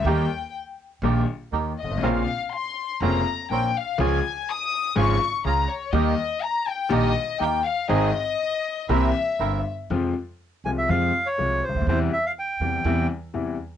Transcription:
<<
  \new Staff \with { instrumentName = "Violin section" } { \time 4/4 \key ees \mixolydian \tempo 4 = 122 g''4 r2 r8 ees''8 | f''4 c'''4 bes''4 g''8 f''8 | aes''4 ees'''4 des'''4 bes''8 des''8 | ees''4 bes''8 g''8 ees''4 g''8 f''8 |
ees''2 e''4. r8 | \key f \minor r1 | r1 | }
  \new Staff \with { instrumentName = "Bandoneon" } { \time 4/4 \key ees \mixolydian r1 | r1 | r1 | r1 |
r1 | \key f \minor r4. aes''16 e''16 f''8. des''8. c''8 | c''8 e''16 f''16 g''4. r4. | }
  \new Staff \with { instrumentName = "Bandoneon" } { \time 4/4 \key ees \mixolydian <bes ees' g'>8 r4. <bes ees' g'>8 r8 <bes ees' g'>8 r8 | <c' des' bes'>8 r4. <c' des' bes'>8 r8 <c' des' bes'>8 r8 | <des' f' aes'>8 r4. <des' f' aes'>8 r8 <des' f' aes'>8 r8 | <bes ees' g'>8 r4. <bes ees' g'>8 r8 <bes ees' g'>8 r8 |
<c' ees' aes'>8 r4. <c' e' bes'>8 r8 <c' e' bes'>8 r8 | \key f \minor r1 | r1 | }
  \new Staff \with { instrumentName = "Grand piano" } { \clef bass \time 4/4 \key ees \mixolydian <ees, ees g bes g'>8 r4. <bes,, bes, ees g bes g'>8 r8 <ees, ees>8 r32 g,,32 aes,,32 a,,32 | <bes,, bes, des bes c' f'>8 r4. <f,, f, des bes c' f'>8 r8 <bes,, bes,>8 r8 | <des, des f aes f'>8 r4. <aes,, aes, des f aes f'>8 r8 <des, des>8 r8 | <ees, ees g bes g'>8 r4. <bes,, bes, ees g bes g'>8 r8 <ees, ees>8 r8 |
<aes,, aes, ees aes c' aes'>8 r4. <c, c e bes c' g'>8 r8 <g,, g,>8 r8 | \key f \minor <f, c f aes f'>8 r4 <c, c f aes f'>8 <f, c f aes f'>8 r8 <c, c f aes f'>8 r32 des,32 d,32 ees,32 | <e, c e g e'>8 r4 <e, c e g e'>8 <e, c e g e'>8 r8 <e, c e g e'>8 r8 | }
  \new Staff \with { instrumentName = "Upright bass" } { \clef bass \time 4/4 \key ees \mixolydian ees,16. r4. r32 bes,,16. r8 r32 ees,16. r16 g,,32 aes,,32 a,,32 | bes,,16. r4. r32 f,,16. r8 r32 bes,,16. r8 r32 | des,16. r4. r32 aes,,16. r8 r32 des,16. r8 r32 | ees,16. r4. r32 bes,,16. r8 r32 ees,16. r8 r32 |
aes,,16. r4. r32 c,16. r8 r32 g,,16. r8 r32 | \key f \minor f,16. r4 r32 c,16. r32 f,16. r8 r32 c,16. r16 des,32 d,32 ees,32 | e,16. r4 r32 e,16. r32 e,16. r8 r32 e,16. r8 r32 | }
>>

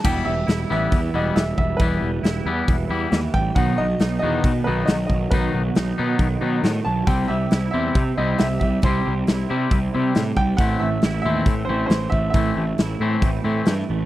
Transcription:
<<
  \new Staff \with { instrumentName = "Upright piano" } { \time 4/4 \key e \minor \tempo 4 = 137 g''8 e''4 e''4 dis''8 e''8 e''8 | b'2. r8 g''8 | fis''8 dis''4 dis''4 b'8 dis''8 dis''8 | b'2. r8 a''8 |
g''8 e''4 e''4 dis''8 e''8 e''8 | c''2. r8 g''8 | fis''8 e''4 e''4 c''8 c''8 e''8 | e''2. r4 | }
  \new Staff \with { instrumentName = "Clean electric guitar" } { \time 4/4 \key e \minor <e g b e'>8 r4 <e g b e'>8 r8 <e g b e'>8 r4 | <e g b e'>8 r4 <e g b e'>8 r8 <e g b e'>8 r4 | <dis fis b dis'>8 r4 <dis fis b dis'>8 r8 <dis fis b dis'>8 r4 | <dis fis b dis'>8 r4 <dis fis b dis'>8 r8 <dis fis b dis'>8 r4 |
<c g c' e'>8 r4 <c g c' e'>8 r8 <c g c' e'>8 r4 | <c g c' e'>8 r4 <c g c' e'>8 r8 <c g c' e'>8 r4 | <e a c' e'>8 r4 <e a c' e'>8 r8 <e a c' e'>8 r4 | <e a c' e'>8 r4 <e a c' e'>8 r8 <e a c' e'>8 r4 | }
  \new Staff \with { instrumentName = "Clean electric guitar" } { \clef bass \time 4/4 \key e \minor e8 g8 e'8 b8 e8 g8 e8 g8 | e8 g8 e'8 b8 e8 g8 e8 g8 | b,8 fis8 dis'8 b8 dis8 fis8 dis8 fis8 | b,8 fis8 dis'8 b8 dis8 fis8 dis8 fis8 |
c8 g8 e'8 c'8 c8 g8 c8 g8 | c8 g8 e'8 c'8 c8 g8 c8 g8 | a,8 a8 e'8 c'8 e8 a8 e8 a8 | a,8 a8 e'8 c'8 e8 a8 e8 a8 | }
  \new Staff \with { instrumentName = "Picked electric bass" } { \clef bass \time 4/4 \key e \minor e,,8 e,,8 e,,8 a,,8 e,8 e,,8 e,,8 e,,8 | e,,8 e,,8 e,,8 e,8 e,,8 e,8 dis,8 a,,8 | b,,8 b,,8 b,,8 e,8 b,8 b,,8 b,,8 b,,8 | b,,8 b,,8 b,,8 b,8 b,,8 b,8 a,8 b,,8 |
c,8 c,8 c,8 e,8 c8 c,8 c,8 c,8 | c,8 c,8 c,8 c8 c,8 c8 a,8 c,8 | a,,8 a,,8 a,,8 dis,8 a,8 a,,8 a,,8 a,,8 | a,,8 a,,8 a,,8 a,8 a,,8 a,8 g,8 a,,8 | }
  \new DrumStaff \with { instrumentName = "Drums" } \drummode { \time 4/4 <cymc bd>4 <hho sn>4 <hho bd>4 <hho sn>8 bd8 | <hho bd>4 <hho sn>4 <hho bd>4 <hho sn>8 bd8 | <hho bd>4 <hho sn>4 <hho bd>4 <hho sn>8 bd8 | <hho bd>4 <hho sn>4 <hho bd>4 <hho sn>4 |
<hho bd>4 <hho sn>4 <hho bd>4 <hho sn>8 bd8 | <hho bd>4 <hho sn>4 <hho bd>4 <hho sn>8 bd8 | <hho bd>4 <hho sn>4 <hho bd>4 <hho sn>8 bd8 | <hho bd>4 <hho sn>4 <hho bd>4 <hho sn>4 | }
>>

